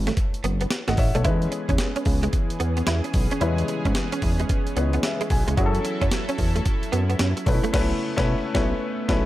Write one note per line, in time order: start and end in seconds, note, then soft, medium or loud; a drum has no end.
0.00 0.12 G#1 medium
0.00 0.94 A3 medium
0.00 0.94 C#4 medium
0.00 0.94 E4 medium
0.00 0.71 B4 medium
0.07 0.13 A3 medium
0.07 snare medium
0.07 closed hi-hat medium
0.17 muted clean electric guitar stroke soft
0.17 kick medium
0.17 closed hi-hat medium
0.34 closed hi-hat medium
0.44 0.66 F#1 loud
0.44 0.55 B3 medium
0.44 closed hi-hat medium
0.61 0.67 B3 medium
0.61 closed hi-hat medium
0.70 snare loud
0.70 closed hi-hat medium
0.88 0.96 G#1 medium
0.88 0.94 A3 medium
0.88 0.98 D#5 medium
0.88 0.98 F#5 medium
0.88 snare medium
0.88 closed hi-hat medium
0.97 1.12 A1 medium
0.97 1.14 C#5 medium
0.97 1.14 E5 medium
0.97 muted clean electric guitar stroke soft
0.97 kick loud
0.97 open hi-hat medium
1.15 1.26 B1 medium
1.15 1.21 A3 medium
1.15 1.41 A4 medium
1.15 1.41 C#5 medium
1.15 closed hi-hat medium
1.24 1.47 E2 loud
1.24 5.54 E3 medium
1.24 3.37 G#3 medium
1.24 5.54 B3 medium
1.24 3.37 C#4 medium
1.24 7.43 C#4 medium
1.24 1.36 E4 medium
1.24 3.37 E4 medium
1.24 5.54 G#4 medium
1.24 3.38 B4 medium
1.24 kick loud
1.24 closed hi-hat medium
1.42 closed hi-hat soft
1.52 muted clean electric guitar stroke soft
1.52 closed hi-hat medium
1.69 1.77 E2 medium
1.69 1.76 C#4 medium
1.69 kick loud
1.69 closed hi-hat medium
1.78 snare loud
1.78 closed hi-hat medium
1.96 2.03 C#4 medium
1.96 closed hi-hat medium
2.05 2.28 C#2 loud
2.05 muted clean electric guitar stroke soft
2.05 kick medium
2.05 open hi-hat medium
2.23 2.30 G#3 medium
2.23 closed hi-hat medium
2.33 muted clean electric guitar stroke soft
2.33 kick medium
2.33 closed hi-hat medium
2.50 closed hi-hat medium
2.60 2.83 E2 medium
2.60 2.71 B3 medium
2.60 closed hi-hat medium
2.77 2.83 B3 medium
2.77 closed hi-hat medium
2.87 3.02 E2 medium
2.87 2.98 E4 medium
2.87 snare loud
2.87 closed hi-hat medium
3.04 muted clean electric guitar stroke soft
3.04 closed hi-hat medium
3.14 3.28 B1 medium
3.14 kick loud
3.14 open hi-hat medium
3.31 3.38 C#4 medium
3.31 closed hi-hat medium
3.40 3.64 E2 loud
3.40 3.49 G3 medium
3.40 4.73 C#4 medium
3.40 3.53 E4 medium
3.40 4.74 E4 medium
3.40 4.74 B4 medium
3.40 closed hi-hat medium
3.47 4.75 G#3 medium
3.58 closed hi-hat soft
3.68 muted clean electric guitar stroke soft
3.68 closed hi-hat medium
3.85 3.94 G#2 loud
3.85 3.92 C#4 medium
3.85 kick medium
3.85 closed hi-hat soft
3.95 snare loud
3.95 closed hi-hat medium
4.12 4.19 C#4 medium
4.12 closed hi-hat medium
4.22 4.45 E2 loud
4.22 muted clean electric guitar stroke soft
4.22 kick medium
4.22 open hi-hat medium
4.40 4.46 G#3 medium
4.40 closed hi-hat medium
4.49 muted clean electric guitar stroke soft
4.49 kick medium
4.49 closed hi-hat medium
4.67 closed hi-hat medium
4.76 4.99 C#2 loud
4.76 5.57 G#3 medium
4.76 4.88 B3 medium
4.76 5.56 C#4 medium
4.76 5.57 E4 medium
4.76 5.58 B4 medium
4.76 closed hi-hat medium
4.93 5.00 B3 medium
4.93 closed hi-hat medium
5.03 5.29 E5 medium
5.03 snare loud
5.03 closed hi-hat medium
5.21 5.27 G#3 medium
5.21 closed hi-hat medium
5.30 5.45 B1 medium
5.30 5.56 G#5 medium
5.30 muted clean electric guitar stroke soft
5.30 kick medium
5.30 open hi-hat medium
5.48 5.56 C#2 loud
5.48 5.54 G#3 medium
5.48 closed hi-hat medium
5.57 5.80 F#2 loud
5.57 7.43 F#3 medium
5.57 7.45 F#3 medium
5.57 7.43 C#4 medium
5.57 9.26 E4 medium
5.57 7.43 E4 medium
5.57 5.69 F#4 medium
5.57 5.67 G#4 medium
5.57 7.45 A4 medium
5.57 kick loud
5.57 closed hi-hat medium
5.66 7.47 A4 medium
5.75 closed hi-hat soft
5.85 muted clean electric guitar stroke soft
5.85 closed hi-hat medium
6.02 6.10 F#2 medium
6.02 6.08 C#4 medium
6.02 kick medium
6.02 closed hi-hat soft
6.11 snare loud
6.11 closed hi-hat medium
6.29 6.35 C#4 medium
6.29 closed hi-hat medium
6.38 6.61 E2 medium
6.38 muted clean electric guitar stroke soft
6.38 kick medium
6.38 open hi-hat medium
6.56 6.62 A3 medium
6.56 closed hi-hat medium
6.65 muted clean electric guitar stroke soft
6.65 kick medium
6.65 closed hi-hat medium
6.83 closed hi-hat medium
6.92 7.15 F#2 loud
6.92 7.04 B3 medium
6.92 closed hi-hat medium
7.10 7.16 B3 medium
7.10 closed hi-hat medium
7.19 7.34 F#2 medium
7.19 7.31 C#4 medium
7.19 snare loud
7.19 closed hi-hat medium
7.37 muted clean electric guitar stroke soft
7.37 closed hi-hat medium
7.46 7.61 B1 loud
7.46 7.71 A3 medium
7.46 9.26 A3 medium
7.46 9.26 B3 medium
7.46 7.72 C#4 medium
7.46 7.55 D#4 medium
7.46 7.73 B4 medium
7.46 kick loud
7.46 open hi-hat medium
7.54 7.77 E4 medium
7.64 7.70 A3 medium
7.64 closed hi-hat medium
7.73 7.93 B1 loud
7.73 7.93 A3 loud
7.73 7.93 C#4 medium
7.73 7.94 B4 loud
7.73 kick loud
7.73 snare loud
7.73 crash medium
7.81 7.97 E4 loud
8.16 8.35 B1 loud
8.16 8.34 A3 loud
8.16 8.35 C#4 loud
8.16 8.36 B4 loud
8.16 kick loud
8.16 snare loud
8.25 8.39 E4 loud
8.54 8.74 B1 loud
8.54 8.74 A3 loud
8.54 8.74 C#4 loud
8.54 8.74 E4 loud
8.54 8.75 B4 loud
8.54 kick loud
8.54 snare loud
9.08 9.26 B1 loud
9.08 9.26 A3 loud
9.08 9.26 C#4 loud
9.08 9.26 E4 loud
9.08 9.26 B4 loud
9.08 kick loud
9.08 snare loud